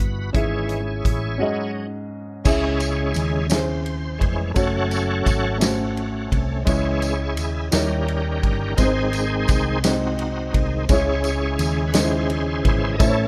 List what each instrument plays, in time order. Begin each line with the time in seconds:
Already playing: upright piano C#3 B3 E4 F#4 G#4 D#5, tonewheel organ F#4 B4
0.00 fingered electric bass G1
0.33 fingered electric bass G#1, upright piano G#2 C#4 E4 G#4 E5, tonewheel organ E3 G#3 C#4 E4 G#4 C#5, kick, closed hi-hat
0.69 closed hi-hat
1.05 fingered electric bass A1, kick, closed hi-hat
1.38 upright piano G#2 C#4 F#4 G#4, tonewheel organ F#3 C#4 D#4
1.42 upright piano D#5
2.44 fingered electric bass C#2, tonewheel organ C#3 G#3 C#4 E4 G#4 C#5, upright piano C#3 C#4 E4 G#4, kick, crash, tambourine
2.48 upright piano E5
2.80 ride bell, tambourine
3.14 fingered electric bass D#2, ride bell, tambourine
3.50 upright piano C#4 E4 G#4 C5, tonewheel organ C5, snare, ride bell, tambourine
3.85 tonewheel organ C5, ride bell
4.18 fingered electric bass F1, tonewheel organ E3 G#3 C#4 C5, kick, ride bell
4.54 fingered electric bass F#1, tonewheel organ F#3 A3 C#4 F#4 A4 C#5, upright piano A3 C#4 F#4 C#5, kick, ride bell, tambourine
4.91 ride bell, tambourine
5.26 fingered electric bass G#1, kick, ride bell, tambourine
5.58 upright piano A3 C#4 F#4 C5, tonewheel organ A3 C#4 F#4, ride bell, tambourine
5.62 snare
5.97 ride bell
6.32 fingered electric bass C2, kick, ride bell
6.65 fingered electric bass C#2, upright piano C#3 G#3 C#4 E4 C#5, tonewheel organ E3 G#3 C#4 E4 G#4 C#5, kick, ride bell, tambourine
7.02 ride bell, tambourine
7.37 fingered electric bass D#2, ride bell, tambourine
7.72 fingered electric bass D#2, tonewheel organ D#3 G3 C#4 G4 A#4, upright piano D#3 G3 D#4 E4 C#5, snare, ride bell, tambourine
8.08 ride bell
8.42 fingered electric bass G1, tonewheel organ A#4, kick, ride bell
8.76 fingered electric bass G#1, upright piano G#2 G#3 C4 D#4, tonewheel organ D#3 G#3 C4 D#4 G#4 C5, kick, ride bell, tambourine
8.81 upright piano C5
9.13 ride bell, tambourine
9.48 fingered electric bass C2, kick, snare, ride bell, tambourine
9.83 upright piano G#3 C4 D#4, tonewheel organ C4 D#4 F#4, snare, ride bell, tambourine
9.87 upright piano C5
10.19 ride bell
10.53 fingered electric bass C2, tonewheel organ D#3 G#3 C4, kick, ride bell
10.88 fingered electric bass C#2, tonewheel organ C#3 G#3 C#4 E4 G#4 C#5, upright piano C#3 G#3 C#4 E4 C#5, kick, ride bell, tambourine
11.24 ride bell, tambourine
11.59 fingered electric bass D#2, ride bell, tambourine
11.87 tonewheel organ B4
11.93 upright piano G#3 C#4 D#4, tonewheel organ E4 G#4, snare, ride bell, tambourine
11.97 upright piano C5, tonewheel organ C5
12.02 upright piano E4
12.30 ride bell
12.64 fingered electric bass G#1, tonewheel organ E3 G#3 C#4 C5, kick, ride bell
12.92 tonewheel organ D#5
12.98 fingered electric bass A1, upright piano A2 A3 C#4 E4, tonewheel organ E3 A3 C#4 E4 A4 C#5, kick, ride bell, tambourine
13.03 upright piano C5
13.09 upright piano C#5